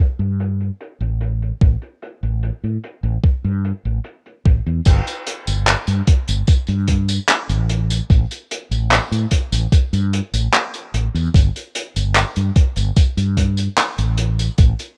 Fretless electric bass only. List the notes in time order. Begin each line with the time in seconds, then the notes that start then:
0.19 G2
1.00 A1
1.62 A1
2.23 A1
2.63 A2
3.03 A1
3.44 G2
3.85 A1
4.46 A1
4.66 E2
4.86 G1
5.48 G1
5.88 G2
6.29 G1
6.48 muted fretless electric bass stroke
6.69 G2
7.50 A1
8.10 A1
8.71 A1
9.12 A2
9.52 A1
9.93 G2
10.33 A1
10.94 A1
11.14 E2
11.34 G1
11.96 G1
12.37 G2
12.77 G1
12.97 muted fretless electric bass stroke
13.17 G2
13.99 A1
14.59 A1